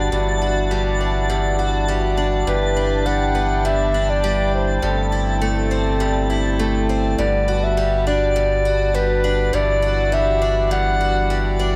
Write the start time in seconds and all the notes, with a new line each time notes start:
Already playing: G2 G3 D4 F#4 A5
0.11 G1 G2 E3 D4 F#4
0.42 F#4
0.71 G3
1.00 D4
1.30 G2
1.59 F#4
1.88 G3
2.17 D4
2.46 G1 G2 G4 B4
2.77 D4
3.06 G3 F#5
3.35 B3
3.65 G2 E5
3.94 D4
4.10 D5
4.24 G3
4.54 C5
4.82 G1 G2 C3 A3
5.12 E4
5.41 A3
5.71 C4
6.00 G2
6.30 E4
6.59 A3
6.89 C4
7.18 G1 G2 B3 D5
7.48 F#4
7.63 E5
7.77 G3
8.07 D4 D5
8.36 G2
8.65 F#4
8.94 G3 B4
9.24 D4
9.53 G1 G2 E3 D4 F#4 D5
9.82 F#4
10.12 G3 E5
10.42 D4
10.71 G2 F#5
11.01 F#4
11.30 G3
11.59 D4